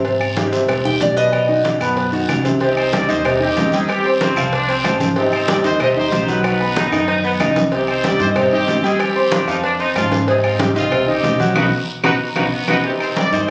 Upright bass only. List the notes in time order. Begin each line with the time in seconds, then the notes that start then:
Already playing: G#2
0.52 D#2
1.01 B1
1.80 F#2
2.29 C2
3.09 D#2
3.57 F2
4.37 C2
4.85 G#1
5.64 D#2
6.12 B1
6.92 F#2
7.40 C2
8.19 G2
8.67 F2
9.47 F2
9.95 G#2
10.76 C2
11.24 B1
11.56 B1
12.04 B1
12.36 B1
12.68 B1
13.32 G2